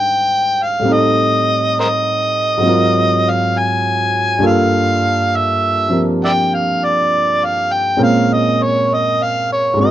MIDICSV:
0, 0, Header, 1, 3, 480
1, 0, Start_track
1, 0, Tempo, 892857
1, 454, Time_signature, 4, 2, 24, 8
1, 5327, End_track
2, 0, Start_track
2, 0, Title_t, "Harmonica"
2, 0, Program_c, 0, 22
2, 0, Note_on_c, 0, 79, 87
2, 336, Note_on_c, 0, 77, 70
2, 344, Note_off_c, 0, 79, 0
2, 498, Note_on_c, 0, 75, 82
2, 506, Note_off_c, 0, 77, 0
2, 956, Note_off_c, 0, 75, 0
2, 969, Note_on_c, 0, 70, 62
2, 969, Note_on_c, 0, 72, 62
2, 969, Note_on_c, 0, 75, 89
2, 1006, Note_off_c, 0, 70, 0
2, 1010, Note_off_c, 0, 72, 0
2, 1775, Note_on_c, 0, 77, 79
2, 1783, Note_off_c, 0, 75, 0
2, 1928, Note_on_c, 0, 80, 79
2, 1936, Note_off_c, 0, 77, 0
2, 2398, Note_on_c, 0, 77, 86
2, 2406, Note_off_c, 0, 80, 0
2, 2880, Note_on_c, 0, 76, 83
2, 2888, Note_off_c, 0, 77, 0
2, 3267, Note_off_c, 0, 76, 0
2, 3358, Note_on_c, 0, 74, 56
2, 3358, Note_on_c, 0, 76, 56
2, 3358, Note_on_c, 0, 79, 80
2, 3392, Note_off_c, 0, 76, 0
2, 3396, Note_off_c, 0, 74, 0
2, 3517, Note_on_c, 0, 77, 69
2, 3525, Note_off_c, 0, 79, 0
2, 3679, Note_on_c, 0, 74, 70
2, 3687, Note_off_c, 0, 77, 0
2, 4006, Note_on_c, 0, 77, 74
2, 4014, Note_off_c, 0, 74, 0
2, 4153, Note_on_c, 0, 79, 69
2, 4161, Note_off_c, 0, 77, 0
2, 4303, Note_off_c, 0, 79, 0
2, 4315, Note_on_c, 0, 77, 78
2, 4478, Note_on_c, 0, 75, 70
2, 4486, Note_off_c, 0, 77, 0
2, 4638, Note_on_c, 0, 73, 63
2, 4646, Note_off_c, 0, 75, 0
2, 4803, Note_on_c, 0, 75, 75
2, 4811, Note_off_c, 0, 73, 0
2, 4962, Note_on_c, 0, 77, 69
2, 4970, Note_off_c, 0, 75, 0
2, 5108, Note_off_c, 0, 77, 0
2, 5120, Note_on_c, 0, 73, 60
2, 5257, Note_off_c, 0, 73, 0
2, 5273, Note_on_c, 0, 75, 65
2, 5327, Note_off_c, 0, 75, 0
2, 5327, End_track
3, 0, Start_track
3, 0, Title_t, "Grand piano"
3, 0, Program_c, 1, 0
3, 0, Control_c, 1, 64, 127
3, 0, Note_on_c, 1, 44, 42
3, 0, Note_on_c, 1, 51, 39
3, 0, Note_on_c, 1, 55, 35
3, 0, Note_on_c, 1, 60, 38
3, 0, Note_on_c, 1, 62, 31
3, 0, Note_on_c, 1, 70, 48
3, 0, Note_on_c, 1, 72, 42
3, 427, Note_on_c, 1, 45, 45
3, 434, Note_off_c, 1, 55, 0
3, 442, Note_on_c, 1, 55, 41
3, 448, Note_off_c, 1, 44, 0
3, 448, Note_off_c, 1, 60, 0
3, 453, Note_off_c, 1, 51, 0
3, 453, Note_off_c, 1, 62, 0
3, 456, Note_on_c, 1, 60, 43
3, 458, Note_off_c, 1, 72, 0
3, 460, Control_c, 1, 64, 0
3, 463, Note_off_c, 1, 70, 0
3, 469, Note_on_c, 1, 63, 43
3, 488, Note_on_c, 1, 69, 48
3, 539, Control_c, 1, 64, 127
3, 1384, Note_on_c, 1, 44, 47
3, 1397, Note_on_c, 1, 54, 47
3, 1400, Note_off_c, 1, 45, 0
3, 1403, Note_off_c, 1, 60, 0
3, 1407, Note_off_c, 1, 55, 0
3, 1411, Note_on_c, 1, 60, 43
3, 1421, Note_off_c, 1, 63, 0
3, 1421, Control_c, 1, 64, 0
3, 1429, Note_on_c, 1, 65, 45
3, 1430, Note_off_c, 1, 69, 0
3, 1442, Note_on_c, 1, 70, 52
3, 1516, Control_c, 1, 64, 127
3, 2357, Note_on_c, 1, 43, 53
3, 2358, Note_off_c, 1, 44, 0
3, 2364, Note_off_c, 1, 54, 0
3, 2364, Note_on_c, 1, 55, 46
3, 2370, Note_off_c, 1, 65, 0
3, 2372, Note_off_c, 1, 60, 0
3, 2372, Note_on_c, 1, 58, 49
3, 2378, Note_on_c, 1, 65, 51
3, 2379, Control_c, 1, 64, 0
3, 2384, Note_on_c, 1, 69, 55
3, 2387, Note_off_c, 1, 70, 0
3, 2484, Control_c, 1, 64, 127
3, 3165, Note_on_c, 1, 53, 40
3, 3171, Note_on_c, 1, 60, 36
3, 3178, Note_on_c, 1, 67, 36
3, 3183, Note_on_c, 1, 70, 45
3, 4283, Note_off_c, 1, 60, 0
3, 4284, Note_off_c, 1, 70, 0
3, 4284, Note_on_c, 1, 46, 52
3, 4285, Note_off_c, 1, 43, 0
3, 4287, Note_on_c, 1, 56, 47
3, 4289, Note_off_c, 1, 53, 0
3, 4289, Note_off_c, 1, 55, 0
3, 4289, Note_on_c, 1, 61, 47
3, 4291, Note_on_c, 1, 60, 45
3, 4292, Note_on_c, 1, 70, 52
3, 4293, Note_off_c, 1, 58, 0
3, 4295, Note_off_c, 1, 65, 0
3, 4296, Note_off_c, 1, 67, 0
3, 4299, Note_off_c, 1, 69, 0
3, 4299, Control_c, 1, 64, 0
3, 4406, Control_c, 1, 64, 127
3, 5234, Note_on_c, 1, 44, 50
3, 5243, Note_off_c, 1, 56, 0
3, 5250, Note_off_c, 1, 46, 0
3, 5251, Note_on_c, 1, 56, 47
3, 5253, Note_off_c, 1, 61, 0
3, 5254, Note_off_c, 1, 60, 0
3, 5254, Note_off_c, 1, 70, 0
3, 5261, Control_c, 1, 64, 0
3, 5264, Note_on_c, 1, 60, 44
3, 5280, Note_on_c, 1, 66, 45
3, 5292, Note_on_c, 1, 70, 57
3, 5327, Note_off_c, 1, 44, 0
3, 5327, Note_off_c, 1, 56, 0
3, 5327, Note_off_c, 1, 60, 0
3, 5327, Note_off_c, 1, 66, 0
3, 5327, Note_off_c, 1, 70, 0
3, 5327, End_track
0, 0, End_of_file